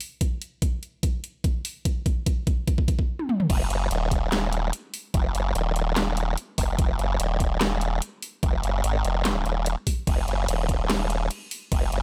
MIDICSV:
0, 0, Header, 1, 3, 480
1, 0, Start_track
1, 0, Tempo, 410959
1, 245, Time_signature, 4, 2, 24, 8
1, 14044, End_track
2, 0, Start_track
2, 0, Title_t, "Wobble bass"
2, 0, Program_c, 0, 39
2, 4085, Note_on_c, 0, 29, 100
2, 4307, Note_off_c, 0, 29, 0
2, 4325, Note_on_c, 0, 30, 96
2, 4547, Note_off_c, 0, 30, 0
2, 4565, Note_on_c, 0, 27, 97
2, 5507, Note_off_c, 0, 27, 0
2, 6005, Note_on_c, 0, 29, 96
2, 6227, Note_off_c, 0, 29, 0
2, 6246, Note_on_c, 0, 30, 98
2, 6467, Note_off_c, 0, 30, 0
2, 6485, Note_on_c, 0, 27, 97
2, 7427, Note_off_c, 0, 27, 0
2, 7686, Note_on_c, 0, 29, 98
2, 7907, Note_off_c, 0, 29, 0
2, 7926, Note_on_c, 0, 29, 97
2, 8147, Note_off_c, 0, 29, 0
2, 8165, Note_on_c, 0, 30, 96
2, 8387, Note_off_c, 0, 30, 0
2, 8406, Note_on_c, 0, 27, 100
2, 9347, Note_off_c, 0, 27, 0
2, 9845, Note_on_c, 0, 29, 100
2, 10067, Note_off_c, 0, 29, 0
2, 10086, Note_on_c, 0, 30, 98
2, 10307, Note_off_c, 0, 30, 0
2, 10325, Note_on_c, 0, 32, 95
2, 10547, Note_off_c, 0, 32, 0
2, 10565, Note_on_c, 0, 29, 99
2, 11027, Note_off_c, 0, 29, 0
2, 11046, Note_on_c, 0, 27, 97
2, 11390, Note_off_c, 0, 27, 0
2, 11765, Note_on_c, 0, 29, 97
2, 11987, Note_off_c, 0, 29, 0
2, 12006, Note_on_c, 0, 30, 94
2, 12227, Note_off_c, 0, 30, 0
2, 12247, Note_on_c, 0, 27, 96
2, 13188, Note_off_c, 0, 27, 0
2, 13686, Note_on_c, 0, 29, 100
2, 13907, Note_off_c, 0, 29, 0
2, 13926, Note_on_c, 0, 30, 97
2, 14044, Note_off_c, 0, 30, 0
2, 14044, End_track
3, 0, Start_track
3, 0, Title_t, "Drums"
3, 6, Note_on_c, 9, 46, 89
3, 123, Note_off_c, 9, 46, 0
3, 244, Note_on_c, 9, 36, 101
3, 245, Note_on_c, 9, 42, 75
3, 361, Note_off_c, 9, 36, 0
3, 362, Note_off_c, 9, 42, 0
3, 485, Note_on_c, 9, 42, 50
3, 602, Note_off_c, 9, 42, 0
3, 724, Note_on_c, 9, 36, 103
3, 725, Note_on_c, 9, 42, 77
3, 841, Note_off_c, 9, 36, 0
3, 842, Note_off_c, 9, 42, 0
3, 966, Note_on_c, 9, 42, 50
3, 1083, Note_off_c, 9, 42, 0
3, 1204, Note_on_c, 9, 36, 101
3, 1206, Note_on_c, 9, 42, 77
3, 1321, Note_off_c, 9, 36, 0
3, 1323, Note_off_c, 9, 42, 0
3, 1446, Note_on_c, 9, 42, 53
3, 1562, Note_off_c, 9, 42, 0
3, 1684, Note_on_c, 9, 36, 105
3, 1686, Note_on_c, 9, 42, 77
3, 1801, Note_off_c, 9, 36, 0
3, 1803, Note_off_c, 9, 42, 0
3, 1925, Note_on_c, 9, 46, 87
3, 2042, Note_off_c, 9, 46, 0
3, 2164, Note_on_c, 9, 36, 104
3, 2165, Note_on_c, 9, 42, 77
3, 2281, Note_off_c, 9, 36, 0
3, 2282, Note_off_c, 9, 42, 0
3, 2404, Note_on_c, 9, 36, 104
3, 2406, Note_on_c, 9, 42, 50
3, 2521, Note_off_c, 9, 36, 0
3, 2522, Note_off_c, 9, 42, 0
3, 2644, Note_on_c, 9, 36, 104
3, 2645, Note_on_c, 9, 42, 74
3, 2761, Note_off_c, 9, 36, 0
3, 2762, Note_off_c, 9, 42, 0
3, 2884, Note_on_c, 9, 36, 107
3, 2885, Note_on_c, 9, 42, 50
3, 3001, Note_off_c, 9, 36, 0
3, 3002, Note_off_c, 9, 42, 0
3, 3124, Note_on_c, 9, 36, 105
3, 3125, Note_on_c, 9, 42, 76
3, 3241, Note_off_c, 9, 36, 0
3, 3242, Note_off_c, 9, 42, 0
3, 3248, Note_on_c, 9, 36, 94
3, 3364, Note_off_c, 9, 36, 0
3, 3364, Note_on_c, 9, 36, 108
3, 3366, Note_on_c, 9, 42, 52
3, 3481, Note_off_c, 9, 36, 0
3, 3483, Note_off_c, 9, 42, 0
3, 3488, Note_on_c, 9, 36, 91
3, 3605, Note_off_c, 9, 36, 0
3, 3730, Note_on_c, 9, 48, 53
3, 3846, Note_on_c, 9, 47, 79
3, 3847, Note_off_c, 9, 48, 0
3, 3962, Note_off_c, 9, 47, 0
3, 3970, Note_on_c, 9, 45, 82
3, 4085, Note_on_c, 9, 36, 118
3, 4087, Note_off_c, 9, 45, 0
3, 4087, Note_on_c, 9, 42, 83
3, 4087, Note_on_c, 9, 49, 103
3, 4201, Note_off_c, 9, 36, 0
3, 4203, Note_off_c, 9, 42, 0
3, 4203, Note_off_c, 9, 49, 0
3, 4326, Note_on_c, 9, 42, 55
3, 4443, Note_off_c, 9, 42, 0
3, 4566, Note_on_c, 9, 42, 83
3, 4683, Note_off_c, 9, 42, 0
3, 4804, Note_on_c, 9, 36, 63
3, 4807, Note_on_c, 9, 42, 55
3, 4921, Note_off_c, 9, 36, 0
3, 4923, Note_off_c, 9, 42, 0
3, 5047, Note_on_c, 9, 38, 124
3, 5047, Note_on_c, 9, 39, 96
3, 5047, Note_on_c, 9, 42, 83
3, 5163, Note_off_c, 9, 38, 0
3, 5163, Note_off_c, 9, 39, 0
3, 5163, Note_off_c, 9, 42, 0
3, 5286, Note_on_c, 9, 42, 56
3, 5403, Note_off_c, 9, 42, 0
3, 5526, Note_on_c, 9, 42, 83
3, 5642, Note_off_c, 9, 42, 0
3, 5765, Note_on_c, 9, 46, 95
3, 5882, Note_off_c, 9, 46, 0
3, 6004, Note_on_c, 9, 36, 124
3, 6005, Note_on_c, 9, 42, 80
3, 6121, Note_off_c, 9, 36, 0
3, 6122, Note_off_c, 9, 42, 0
3, 6246, Note_on_c, 9, 42, 54
3, 6363, Note_off_c, 9, 42, 0
3, 6487, Note_on_c, 9, 42, 80
3, 6604, Note_off_c, 9, 42, 0
3, 6726, Note_on_c, 9, 42, 54
3, 6843, Note_off_c, 9, 42, 0
3, 6966, Note_on_c, 9, 38, 126
3, 6966, Note_on_c, 9, 39, 96
3, 6966, Note_on_c, 9, 42, 82
3, 7083, Note_off_c, 9, 38, 0
3, 7083, Note_off_c, 9, 39, 0
3, 7083, Note_off_c, 9, 42, 0
3, 7206, Note_on_c, 9, 42, 55
3, 7323, Note_off_c, 9, 42, 0
3, 7446, Note_on_c, 9, 42, 81
3, 7563, Note_off_c, 9, 42, 0
3, 7685, Note_on_c, 9, 36, 66
3, 7686, Note_on_c, 9, 46, 92
3, 7802, Note_off_c, 9, 36, 0
3, 7803, Note_off_c, 9, 46, 0
3, 7925, Note_on_c, 9, 36, 127
3, 7926, Note_on_c, 9, 42, 77
3, 8042, Note_off_c, 9, 36, 0
3, 8043, Note_off_c, 9, 42, 0
3, 8166, Note_on_c, 9, 42, 52
3, 8283, Note_off_c, 9, 42, 0
3, 8406, Note_on_c, 9, 42, 80
3, 8523, Note_off_c, 9, 42, 0
3, 8645, Note_on_c, 9, 36, 67
3, 8646, Note_on_c, 9, 42, 51
3, 8762, Note_off_c, 9, 36, 0
3, 8762, Note_off_c, 9, 42, 0
3, 8886, Note_on_c, 9, 38, 127
3, 8886, Note_on_c, 9, 39, 93
3, 8886, Note_on_c, 9, 42, 80
3, 9003, Note_off_c, 9, 38, 0
3, 9003, Note_off_c, 9, 39, 0
3, 9003, Note_off_c, 9, 42, 0
3, 9126, Note_on_c, 9, 42, 53
3, 9243, Note_off_c, 9, 42, 0
3, 9366, Note_on_c, 9, 42, 77
3, 9483, Note_off_c, 9, 42, 0
3, 9606, Note_on_c, 9, 46, 91
3, 9723, Note_off_c, 9, 46, 0
3, 9845, Note_on_c, 9, 36, 127
3, 9846, Note_on_c, 9, 42, 76
3, 9962, Note_off_c, 9, 36, 0
3, 9963, Note_off_c, 9, 42, 0
3, 10086, Note_on_c, 9, 42, 52
3, 10202, Note_off_c, 9, 42, 0
3, 10325, Note_on_c, 9, 42, 78
3, 10442, Note_off_c, 9, 42, 0
3, 10566, Note_on_c, 9, 42, 51
3, 10682, Note_off_c, 9, 42, 0
3, 10805, Note_on_c, 9, 38, 121
3, 10805, Note_on_c, 9, 39, 91
3, 10805, Note_on_c, 9, 42, 77
3, 10922, Note_off_c, 9, 38, 0
3, 10922, Note_off_c, 9, 39, 0
3, 10922, Note_off_c, 9, 42, 0
3, 11045, Note_on_c, 9, 42, 50
3, 11162, Note_off_c, 9, 42, 0
3, 11285, Note_on_c, 9, 42, 77
3, 11402, Note_off_c, 9, 42, 0
3, 11525, Note_on_c, 9, 36, 61
3, 11525, Note_on_c, 9, 46, 92
3, 11642, Note_off_c, 9, 36, 0
3, 11642, Note_off_c, 9, 46, 0
3, 11765, Note_on_c, 9, 36, 121
3, 11766, Note_on_c, 9, 42, 75
3, 11766, Note_on_c, 9, 49, 68
3, 11881, Note_off_c, 9, 36, 0
3, 11883, Note_off_c, 9, 42, 0
3, 11883, Note_off_c, 9, 49, 0
3, 12006, Note_on_c, 9, 42, 52
3, 12123, Note_off_c, 9, 42, 0
3, 12246, Note_on_c, 9, 42, 77
3, 12246, Note_on_c, 9, 49, 48
3, 12363, Note_off_c, 9, 42, 0
3, 12363, Note_off_c, 9, 49, 0
3, 12485, Note_on_c, 9, 36, 64
3, 12486, Note_on_c, 9, 42, 51
3, 12601, Note_off_c, 9, 36, 0
3, 12603, Note_off_c, 9, 42, 0
3, 12726, Note_on_c, 9, 38, 126
3, 12726, Note_on_c, 9, 39, 88
3, 12726, Note_on_c, 9, 42, 80
3, 12726, Note_on_c, 9, 49, 69
3, 12843, Note_off_c, 9, 38, 0
3, 12843, Note_off_c, 9, 39, 0
3, 12843, Note_off_c, 9, 42, 0
3, 12843, Note_off_c, 9, 49, 0
3, 12965, Note_on_c, 9, 42, 53
3, 13082, Note_off_c, 9, 42, 0
3, 13206, Note_on_c, 9, 42, 77
3, 13206, Note_on_c, 9, 49, 49
3, 13323, Note_off_c, 9, 42, 0
3, 13323, Note_off_c, 9, 49, 0
3, 13446, Note_on_c, 9, 46, 94
3, 13563, Note_off_c, 9, 46, 0
3, 13685, Note_on_c, 9, 36, 118
3, 13686, Note_on_c, 9, 42, 82
3, 13686, Note_on_c, 9, 49, 70
3, 13802, Note_off_c, 9, 36, 0
3, 13803, Note_off_c, 9, 42, 0
3, 13803, Note_off_c, 9, 49, 0
3, 13927, Note_on_c, 9, 42, 53
3, 14043, Note_off_c, 9, 42, 0
3, 14044, End_track
0, 0, End_of_file